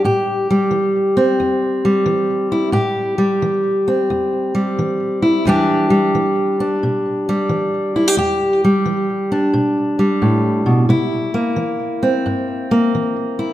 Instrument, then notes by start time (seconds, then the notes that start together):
steel-string acoustic guitar
Already playing: G3
0.04 A2 G4
0.51 G3
0.71 E3
1.17 C4
1.40 E2
1.85 G3
2.06 E3
2.52 E4
2.72 A2 G4
3.18 G3
3.42 E3
3.88 C4
4.10 E2
4.55 G3
4.79 E3
5.22 E4
5.45 E2 E3 G3 D4 G4
5.90 G3
6.15 E3
6.60 D4
6.83 B2
7.29 G3
7.49 E3
7.96 E4
8.08 G4
8.17 E2 G4
8.64 G3
8.86 E3
9.32 D4
9.54 B2
9.99 G3
10.22 A2
10.66 B2
10.89 C3 E4
11.34 A#3
11.56 E3
12.03 C4
12.26 G2
12.71 A#3
12.95 E3
13.39 E4